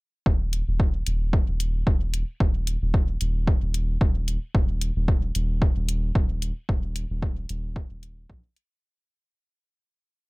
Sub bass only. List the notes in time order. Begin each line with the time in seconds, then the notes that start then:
0.26 D#1
0.67 D#1
1.06 D#1
1.48 D#1
1.87 D#1
2.40 D#1
2.82 D#1
3.21 D#1
3.62 D#1
4.01 D#1
4.55 D#1
4.96 D#1
5.35 D#1
5.76 D#1
6.15 D#1
6.69 D#1
7.10 D#1
7.49 D#1
7.91 D#1
8.30 A#1